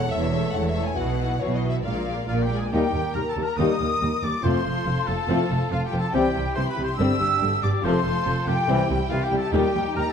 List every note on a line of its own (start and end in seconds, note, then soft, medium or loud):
0.00 0.10 C#5 soft
0.00 0.11 F#5 medium
0.11 0.50 E1 medium
0.11 0.50 E2 medium
0.11 0.31 A3 medium
0.11 0.32 E4 medium
0.11 0.31 A4 soft
0.11 0.30 C#5 soft
0.11 0.55 E5 medium
0.32 0.53 A3 soft
0.32 0.52 E4 soft
0.32 0.53 A4 medium
0.32 0.53 C#5 medium
0.54 0.92 E1 medium
0.54 0.92 E2 medium
0.54 0.75 A3 soft
0.54 0.75 E4 soft
0.54 0.73 A4 soft
0.54 0.74 C#5 medium
0.54 0.69 F#5 medium
0.69 0.83 E5 medium
0.75 0.97 A3 soft
0.75 0.97 E4 soft
0.75 0.97 A4 soft
0.75 0.97 C#5 soft
0.85 0.99 G#5 medium
0.96 1.36 B1 medium
0.96 1.36 B2 medium
0.96 1.19 E3 medium
0.96 1.19 E4 medium
0.96 1.17 F#4 soft
0.96 1.17 B4 soft
0.96 1.41 F#5 medium
1.18 1.41 E3 soft
1.18 1.41 E4 soft
1.18 1.40 F#4 soft
1.18 1.40 B4 soft
1.41 1.79 B1 soft
1.41 1.80 B2 medium
1.41 1.63 E3 soft
1.41 1.63 E4 soft
1.41 1.61 F#4 soft
1.41 1.61 B4 soft
1.41 1.55 C#5 medium
1.56 1.70 D#5 medium
1.62 1.85 E3 soft
1.62 1.85 E4 soft
1.62 1.84 F#4 soft
1.62 1.84 B4 soft
1.70 1.76 E5 medium
1.84 2.23 A#1 soft
1.84 2.24 A#2 medium
1.84 2.06 G#3 soft
1.84 2.06 F4 soft
1.84 2.06 A#4 soft
1.84 2.06 D5 soft
1.84 2.27 F5 medium
2.07 2.29 G#3 soft
2.07 2.29 F4 soft
2.07 2.27 A#4 soft
2.07 2.27 D5 soft
2.28 2.67 A#1 soft
2.28 2.67 A#2 soft
2.28 2.49 A#3 medium
2.28 2.44 F4 soft
2.28 2.49 A#4 soft
2.28 2.49 D5 soft
2.28 2.34 F5 soft
2.28 2.43 F5 medium
2.43 2.58 G4 medium
2.43 2.57 G5 medium
2.43 2.58 G5 medium
2.50 2.72 G#3 soft
2.50 2.72 A#4 soft
2.50 2.72 D5 soft
2.57 2.65 G#4 soft
2.57 2.72 G#5 medium
2.57 2.73 G#5 medium
2.71 2.80 D#2 medium
2.71 2.81 D#2 medium
2.71 2.92 G3 medium
2.71 2.89 G3 soft
2.71 2.88 A#3 medium
2.71 2.88 A#3 soft
2.71 2.92 D#4 medium
2.71 2.87 D#4 medium
2.71 3.14 G4 medium
2.71 4.41 A#4 medium
2.71 3.14 G5 medium
2.71 3.15 G5 medium
2.93 3.01 D#2 soft
2.93 3.02 D#2 soft
2.93 3.01 G3 soft
2.93 3.01 A#3 soft
3.15 3.23 D#2 soft
3.15 3.24 G3 soft
3.15 3.22 A#4 medium
3.15 3.30 A#5 medium
3.29 3.45 A4 medium
3.29 3.35 A5 medium
3.29 3.45 A5 medium
3.36 3.44 D#2 soft
3.36 3.45 D#2 soft
3.36 3.45 G3 soft
3.36 3.45 A#3 soft
3.43 3.59 A#4 medium
3.43 3.58 A#5 medium
3.43 3.60 A#5 medium
3.57 3.67 D#2 medium
3.57 3.79 G3 medium
3.57 3.74 G3 medium
3.57 3.74 A#3 medium
3.57 3.79 D#4 medium
3.57 3.74 D#4 soft
3.57 4.25 D#5 medium
3.57 4.22 D#6 medium
3.80 3.88 D#2 soft
3.80 3.89 D#2 soft
3.80 3.88 G3 soft
3.80 3.88 A#3 soft
4.00 4.10 D#2 soft
4.00 4.09 G3 soft
4.23 4.31 D#2 soft
4.23 4.31 G3 soft
4.23 4.31 A#3 soft
4.23 4.45 D5 medium
4.23 4.44 D6 medium
4.23 4.45 D6 medium
4.43 4.52 F1 medium
4.43 4.53 F2 medium
4.43 4.59 F3 soft
4.43 4.63 F3 medium
4.43 4.59 A3 medium
4.43 4.58 C4 medium
4.43 4.64 C4 medium
4.43 4.59 F4 soft
4.43 6.12 F4 medium
4.43 6.15 A4 medium
4.43 5.09 C5 medium
4.43 5.07 C6 medium
4.43 5.08 C6 medium
4.64 4.73 F1 soft
4.64 4.73 F2 soft
4.64 4.72 F3 soft
4.64 4.73 A3 soft
4.85 4.94 F1 soft
4.85 4.94 F2 soft
4.85 4.94 F3 soft
5.07 5.16 F1 soft
5.07 5.16 F2 soft
5.07 5.15 F3 soft
5.07 5.15 A3 soft
5.07 5.73 A4 medium
5.07 5.72 A5 medium
5.28 5.37 F1 medium
5.28 5.37 F2 medium
5.28 5.49 F3 medium
5.28 5.44 F3 medium
5.28 5.44 A3 medium
5.28 5.49 C4 medium
5.28 5.44 C4 medium
5.28 5.44 F4 soft
5.50 5.59 F1 soft
5.50 5.59 F2 soft
5.50 5.58 F3 soft
5.50 5.58 A3 soft
5.71 5.80 F1 soft
5.71 5.79 F2 soft
5.71 5.79 F3 medium
5.71 5.84 F4 medium
5.71 5.86 F5 medium
5.85 5.99 G4 soft
5.85 6.00 G5 medium
5.85 6.01 G5 medium
5.92 6.01 F1 soft
5.92 6.02 F2 soft
5.92 6.00 F3 soft
5.92 6.00 A3 soft
5.99 6.14 A4 medium
5.99 6.14 A5 medium
5.99 6.15 A5 medium
6.13 6.22 C2 medium
6.13 6.22 C3 medium
6.13 6.29 E3 soft
6.13 6.34 G3 medium
6.13 6.29 G3 medium
6.13 6.34 C4 medium
6.13 6.29 C4 medium
6.13 6.97 E4 medium
6.13 6.29 G4 medium
6.13 7.80 G4 medium
6.13 6.55 G4 medium
6.13 6.56 G5 medium
6.13 6.57 G5 medium
6.35 6.44 C2 medium
6.35 6.43 C3 soft
6.35 6.44 G3 soft
6.56 6.65 C2 soft
6.56 6.64 C3 medium
6.56 6.65 E3 soft
6.56 6.65 G3 soft
6.56 6.62 C5 medium
6.56 6.70 C6 medium
6.56 6.71 C6 medium
6.69 6.83 B4 medium
6.69 6.84 B5 medium
6.69 6.85 B5 medium
6.77 6.87 C2 soft
6.77 6.85 C3 soft
6.77 6.87 G3 soft
6.84 6.91 C5 medium
6.84 6.99 C6 medium
6.84 7.00 C6 medium
6.98 7.07 G1 medium
6.98 7.06 G2 medium
6.98 7.13 D3 medium
6.98 7.14 G3 medium
6.98 7.19 G3 medium
6.98 7.19 C4 medium
6.98 7.15 C4 soft
6.98 7.82 D4 medium
6.98 7.15 G4 medium
6.98 7.64 E5 medium
6.98 7.61 E6 medium
6.98 7.61 E6 loud
7.20 7.28 G1 medium
7.20 7.28 G2 soft
7.20 7.28 G3 medium
7.42 7.50 G1 medium
7.42 7.50 G2 soft
7.42 7.50 D3 medium
7.42 7.50 G3 soft
7.62 7.71 G1 soft
7.62 7.70 G2 soft
7.62 7.72 G3 medium
7.62 7.86 D5 medium
7.62 7.83 D6 medium
7.62 7.71 D6 medium
7.84 7.92 F1 medium
7.84 7.92 F2 medium
7.84 7.99 C3 medium
7.84 7.99 F3 medium
7.84 8.03 F3 medium
7.84 8.04 C4 medium
7.84 8.00 C4 medium
7.84 8.68 F4 medium
7.84 8.68 A4 medium
7.84 8.00 A4 medium
7.84 8.49 C5 medium
7.84 8.46 C6 medium
7.84 8.48 C6 medium
8.05 8.13 F1 medium
8.05 8.13 F2 medium
8.05 8.13 F3 soft
8.05 8.13 A3 soft
8.26 8.34 F1 medium
8.26 8.34 F2 soft
8.26 8.34 F3 soft
8.47 8.55 F1 soft
8.47 8.55 F2 medium
8.47 8.56 F3 soft
8.47 8.55 A3 medium
8.47 8.89 G4 medium
8.47 8.89 G5 medium
8.47 9.10 G5 medium
8.67 8.76 C2 medium
8.67 8.83 C3 medium
8.67 8.84 E3 medium
8.67 8.87 G3 medium
8.67 8.88 C4 medium
8.67 8.84 C4 medium
8.67 9.53 E4 medium
8.67 10.13 G4 medium
8.67 8.84 G4 medium
8.88 8.98 C2 medium
8.88 8.97 G3 medium
9.10 9.19 C2 medium
9.10 9.18 E3 medium
9.10 9.18 G3 medium
9.10 9.25 F4 medium
9.10 9.25 F5 medium
9.10 9.17 F5 medium
9.24 9.37 G4 medium
9.24 9.39 G5 medium
9.24 9.40 G5 medium
9.31 9.39 C2 medium
9.31 9.40 C2 medium
9.31 9.40 G3 medium
9.38 9.54 A4 medium
9.38 9.53 A5 medium
9.38 9.54 A5 medium
9.52 9.61 D#2 medium
9.52 9.68 A#2 medium
9.52 9.68 D#3 medium
9.52 9.73 G3 medium
9.52 9.68 G3 medium
9.52 9.73 A#3 medium
9.52 10.13 D#4 medium
9.52 9.95 G4 medium
9.52 9.68 G4 medium
9.52 9.95 G5 medium
9.74 9.83 D#2 medium
9.74 9.82 G3 medium
9.95 10.04 D#2 medium
9.95 10.03 D#3 medium
9.95 10.03 G3 soft
9.95 10.03 A#4 medium
9.95 10.10 A#5 medium
9.95 10.11 A#5 medium
10.09 10.13 A4 medium